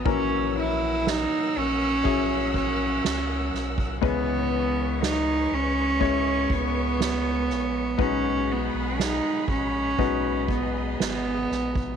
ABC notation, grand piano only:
X:1
M:4/4
L:1/8
Q:1/4=60
K:F#mix
V:1 name="Grand piano"
[E,F,CA]4 [F,CEG]4 | [E,G,CB]4 [G,CEc]4 | [G,DFB]4 [G,DFB]4 |]
V:2 name="Grand piano" clef=bass
A,,3 z4 z | C,3 z4 z | B,,3 z B,,3 z |]